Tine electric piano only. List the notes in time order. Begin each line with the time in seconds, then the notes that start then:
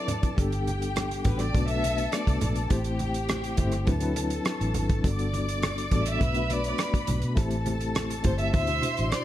Already playing: F#3 C4 D4 E4 B4
0.36 G3 B3 D4 G4 A4
1.24 G3 B3 D4 F#4 A4
1.53 A3 B3 D4 F#4 B4
1.67 A3 B3 D4 F#4 B4
2.69 A3 C4 E4 G4 C5
3.56 A3 C4 E4 G4 C5
3.85 F#3 C4 D4 E4 B4
4.00 F#3 C4 D4 E4 B4
5.03 G3 B3 D4 F#4 A4
5.90 G3 B3 D4 F#4 A4
6.19 A3 B3 D4
6.34 A3 B3 D4 F#4 B4
7.35 A3 C4 E4 G4 C5
8.23 A3 C4 E4 G4 C5
8.52 B3 D4 E4 C5
8.67 B2 D4 E4 F#4 C5